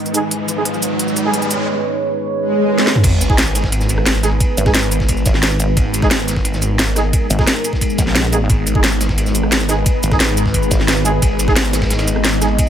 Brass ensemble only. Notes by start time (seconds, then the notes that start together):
0.14 G#3 D#4 G#4
0.57 G#3 D#4 G#4
1.25 G#3 D#4 G#4
3.30 G#3 D#4 G#4
4.23 G#3 D#4 G#4
4.66 G#3 D#4 G#4
6.02 G#3 D#4 G#4
6.96 G#3 D#4 G#4
7.39 G#3 D#4 G#4
8.32 G#3 D#4 G#4
8.75 G#3 D#4 G#4
9.69 G#3 D#4 G#4
10.11 G#3 D#4 G#4
11.05 G#3 D#4 G#4
11.48 G#3 D#4 G#4
12.42 G#3 D#4 G#4